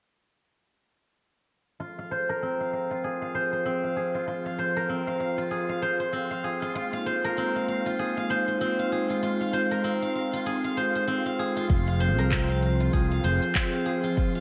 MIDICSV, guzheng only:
0, 0, Header, 1, 2, 480
1, 0, Start_track
1, 0, Key_signature, -4, "minor"
1, 0, Tempo, 618557
1, 1398, Time_signature, 4, 2, 24, 8
1, 11176, End_track
2, 0, Start_track
2, 0, Title_t, "Guzheng"
2, 0, Program_c, 0, 107
2, 1396, Note_on_c, 0, 65, 72
2, 1540, Note_on_c, 0, 77, 63
2, 1639, Note_on_c, 0, 72, 89
2, 1779, Note_on_c, 0, 70, 94
2, 1882, Note_on_c, 0, 60, 72
2, 2018, Note_off_c, 0, 77, 0
2, 2021, Note_on_c, 0, 77, 69
2, 2115, Note_off_c, 0, 77, 0
2, 2118, Note_on_c, 0, 77, 60
2, 2254, Note_off_c, 0, 65, 0
2, 2257, Note_on_c, 0, 65, 68
2, 2359, Note_on_c, 0, 68, 72
2, 2494, Note_off_c, 0, 77, 0
2, 2497, Note_on_c, 0, 77, 68
2, 2594, Note_off_c, 0, 72, 0
2, 2597, Note_on_c, 0, 72, 92
2, 2734, Note_off_c, 0, 72, 0
2, 2737, Note_on_c, 0, 72, 65
2, 2833, Note_off_c, 0, 60, 0
2, 2837, Note_on_c, 0, 60, 81
2, 2976, Note_off_c, 0, 77, 0
2, 2979, Note_on_c, 0, 77, 61
2, 3073, Note_off_c, 0, 68, 0
2, 3076, Note_on_c, 0, 68, 66
2, 3214, Note_off_c, 0, 65, 0
2, 3217, Note_on_c, 0, 65, 68
2, 3313, Note_off_c, 0, 65, 0
2, 3316, Note_on_c, 0, 65, 71
2, 3425, Note_off_c, 0, 70, 0
2, 3455, Note_off_c, 0, 77, 0
2, 3458, Note_on_c, 0, 77, 60
2, 3555, Note_off_c, 0, 72, 0
2, 3559, Note_on_c, 0, 72, 87
2, 3697, Note_on_c, 0, 70, 92
2, 3794, Note_off_c, 0, 60, 0
2, 3798, Note_on_c, 0, 60, 69
2, 3933, Note_off_c, 0, 77, 0
2, 3936, Note_on_c, 0, 77, 67
2, 4032, Note_off_c, 0, 77, 0
2, 4035, Note_on_c, 0, 77, 65
2, 4170, Note_off_c, 0, 65, 0
2, 4173, Note_on_c, 0, 65, 72
2, 4272, Note_off_c, 0, 68, 0
2, 4275, Note_on_c, 0, 68, 70
2, 4413, Note_off_c, 0, 77, 0
2, 4416, Note_on_c, 0, 77, 68
2, 4515, Note_off_c, 0, 72, 0
2, 4518, Note_on_c, 0, 72, 92
2, 4650, Note_off_c, 0, 72, 0
2, 4653, Note_on_c, 0, 72, 64
2, 4752, Note_off_c, 0, 60, 0
2, 4755, Note_on_c, 0, 60, 74
2, 4892, Note_off_c, 0, 77, 0
2, 4895, Note_on_c, 0, 77, 63
2, 4995, Note_off_c, 0, 68, 0
2, 4998, Note_on_c, 0, 68, 65
2, 5135, Note_off_c, 0, 65, 0
2, 5138, Note_on_c, 0, 65, 64
2, 5238, Note_off_c, 0, 65, 0
2, 5241, Note_on_c, 0, 65, 72
2, 5343, Note_off_c, 0, 70, 0
2, 5374, Note_off_c, 0, 77, 0
2, 5377, Note_on_c, 0, 77, 67
2, 5477, Note_off_c, 0, 72, 0
2, 5480, Note_on_c, 0, 72, 85
2, 5622, Note_on_c, 0, 70, 96
2, 5721, Note_off_c, 0, 60, 0
2, 5724, Note_on_c, 0, 60, 68
2, 5861, Note_off_c, 0, 77, 0
2, 5864, Note_on_c, 0, 77, 65
2, 5958, Note_off_c, 0, 77, 0
2, 5961, Note_on_c, 0, 77, 64
2, 6096, Note_off_c, 0, 65, 0
2, 6100, Note_on_c, 0, 65, 71
2, 6199, Note_off_c, 0, 68, 0
2, 6202, Note_on_c, 0, 68, 75
2, 6337, Note_off_c, 0, 77, 0
2, 6340, Note_on_c, 0, 77, 71
2, 6437, Note_off_c, 0, 72, 0
2, 6441, Note_on_c, 0, 72, 94
2, 6576, Note_off_c, 0, 72, 0
2, 6579, Note_on_c, 0, 72, 68
2, 6677, Note_off_c, 0, 60, 0
2, 6681, Note_on_c, 0, 60, 79
2, 6818, Note_off_c, 0, 77, 0
2, 6821, Note_on_c, 0, 77, 70
2, 6919, Note_off_c, 0, 68, 0
2, 6922, Note_on_c, 0, 68, 65
2, 7057, Note_off_c, 0, 65, 0
2, 7060, Note_on_c, 0, 65, 69
2, 7157, Note_off_c, 0, 65, 0
2, 7160, Note_on_c, 0, 65, 73
2, 7268, Note_off_c, 0, 70, 0
2, 7296, Note_off_c, 0, 77, 0
2, 7299, Note_on_c, 0, 77, 65
2, 7393, Note_off_c, 0, 72, 0
2, 7396, Note_on_c, 0, 72, 87
2, 7536, Note_on_c, 0, 70, 92
2, 7633, Note_off_c, 0, 60, 0
2, 7636, Note_on_c, 0, 60, 72
2, 7775, Note_off_c, 0, 77, 0
2, 7778, Note_on_c, 0, 77, 69
2, 7876, Note_off_c, 0, 77, 0
2, 7879, Note_on_c, 0, 77, 64
2, 8016, Note_off_c, 0, 65, 0
2, 8019, Note_on_c, 0, 65, 74
2, 8115, Note_off_c, 0, 68, 0
2, 8118, Note_on_c, 0, 68, 80
2, 8255, Note_off_c, 0, 77, 0
2, 8258, Note_on_c, 0, 77, 65
2, 8355, Note_off_c, 0, 72, 0
2, 8358, Note_on_c, 0, 72, 87
2, 8496, Note_off_c, 0, 72, 0
2, 8499, Note_on_c, 0, 72, 63
2, 8591, Note_off_c, 0, 60, 0
2, 8594, Note_on_c, 0, 60, 78
2, 8733, Note_off_c, 0, 77, 0
2, 8736, Note_on_c, 0, 77, 64
2, 8836, Note_off_c, 0, 68, 0
2, 8839, Note_on_c, 0, 68, 70
2, 8971, Note_off_c, 0, 65, 0
2, 8975, Note_on_c, 0, 65, 70
2, 9071, Note_off_c, 0, 65, 0
2, 9075, Note_on_c, 0, 65, 73
2, 9182, Note_off_c, 0, 70, 0
2, 9211, Note_off_c, 0, 77, 0
2, 9214, Note_on_c, 0, 77, 62
2, 9310, Note_off_c, 0, 72, 0
2, 9313, Note_on_c, 0, 72, 88
2, 9455, Note_on_c, 0, 70, 99
2, 9553, Note_off_c, 0, 60, 0
2, 9556, Note_on_c, 0, 60, 75
2, 9692, Note_off_c, 0, 77, 0
2, 9695, Note_on_c, 0, 77, 68
2, 9793, Note_off_c, 0, 77, 0
2, 9796, Note_on_c, 0, 77, 65
2, 9931, Note_off_c, 0, 65, 0
2, 9935, Note_on_c, 0, 65, 67
2, 10030, Note_off_c, 0, 68, 0
2, 10033, Note_on_c, 0, 68, 75
2, 10172, Note_off_c, 0, 77, 0
2, 10175, Note_on_c, 0, 77, 70
2, 10271, Note_off_c, 0, 72, 0
2, 10274, Note_on_c, 0, 72, 91
2, 10412, Note_off_c, 0, 72, 0
2, 10415, Note_on_c, 0, 72, 64
2, 10510, Note_off_c, 0, 60, 0
2, 10513, Note_on_c, 0, 60, 77
2, 10650, Note_off_c, 0, 77, 0
2, 10653, Note_on_c, 0, 77, 66
2, 10749, Note_off_c, 0, 68, 0
2, 10752, Note_on_c, 0, 68, 66
2, 10888, Note_off_c, 0, 65, 0
2, 10891, Note_on_c, 0, 65, 67
2, 10991, Note_off_c, 0, 65, 0
2, 10994, Note_on_c, 0, 65, 75
2, 11101, Note_off_c, 0, 70, 0
2, 11132, Note_off_c, 0, 77, 0
2, 11136, Note_on_c, 0, 77, 67
2, 11176, Note_off_c, 0, 60, 0
2, 11176, Note_off_c, 0, 65, 0
2, 11176, Note_off_c, 0, 68, 0
2, 11176, Note_off_c, 0, 72, 0
2, 11176, Note_off_c, 0, 77, 0
2, 11176, End_track
0, 0, End_of_file